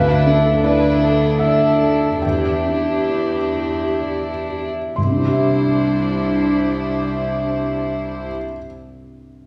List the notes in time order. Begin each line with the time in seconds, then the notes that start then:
Already playing: D2 D4 E4 B4 F5
0.27 D4 A4
0.63 D4 E4 B4 D5
1.02 A4
1.39 D4 E4 D5 E5
1.83 A4
2.22 E2 D4 E4 G4 G5
2.66 D4
3.09 E4
3.55 G4
4.01 D5
4.50 G4
4.96 C2 G3 D4 E4 C5 C6
5.04 C3
5.12 D4
5.19 E4
5.26 G4
5.32 E5